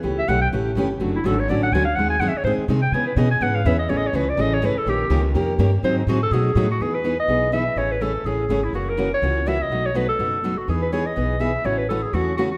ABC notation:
X:1
M:4/4
L:1/8
Q:"Swing" 1/4=248
K:Alyd
V:1 name="Clarinet"
z e f =g z4 | z E A c =d f g ^e | f g (3f e c ^B z2 =g | g B d g f ^e =e d |
(3c d c B =d ^d c B A | =G3 z4 z | ^B D F A G3 F | [K:E] G B2 d3 e2 |
c B A2 G3 E | F ^A2 c3 e d- | d c B A4 F | G B c d3 e2 |
c B A G F2 F F |]
V:2 name="Steel-string acoustic guitar"
[C,E,A,C=G] z [C,E,A,CG] z [C,E,A,CG] z [C,E,A,CG] z | [=D,F,A,CF] z [D,F,A,CF] z [D,F,A,CF] z [D,F,A,CF] z | [D,G,^B,DG] z [D,G,B,DG] z [D,G,B,DG] z [D,G,B,DG] z | [C,E,B,CG] z [C,E,B,CG] z [C,E,B,CG] z [C,E,B,CG] z |
[C,E,A,CG] z [C,E,A,CG] z [C,E,A,CG] z [C,E,A,CG] z | [D,^A,C=G^A] z [D,A,CGA] z [D,A,CGA] z [D,A,CGA] z | [D,F,^B,DG] z [D,F,B,DG] z [=B,,F,A,DF] z [B,,F,A,DF] z | [K:E] [E,B,DG] z [E,B,DG] z [E,B,DG] z [E,B,DG] z |
[C,E,A,CG] z [C,E,A,CG] z [C,E,A,CG] z [C,E,A,CG] z | [C,E,^A,CF] z [C,E,A,CF] z [C,E,A,CF] z [C,E,A,CF] z | [B,,F,A,DF] z [B,,F,A,DF] z [B,,F,A,DF] z [B,,F,A,DF] z | [E,B,DG] z [E,B,DG] z [E,B,DG] z [E,B,DG] z |
[C,E,A,CF] z [C,E,A,CF] z [C,E,A,CF] z [C,E,A,CF] z |]
V:3 name="Upright bass" clef=bass
C,,2 B,,,2 A,,,2 =G,,,2 | F,,,2 G,,,2 A,,,2 =D,,2 | D,,2 F,, z G,, z ^B,,2 | C,2 B,,2 G,,2 E,,2 |
A,,,2 C,,2 A,,,2 G,,, z | ^A,,,2 C,,2 ^E,,2 =G,,2 | G,,2 A,,2 B,,2 A,,2 | [K:E] E,,4 B,,,4 |
A,,,4 A,,,2 G,,,2 | F,,,4 C,,4 | B,,,4 F,,,4 | E,,4 B,,,4 |
A,,,4 E,,4 |]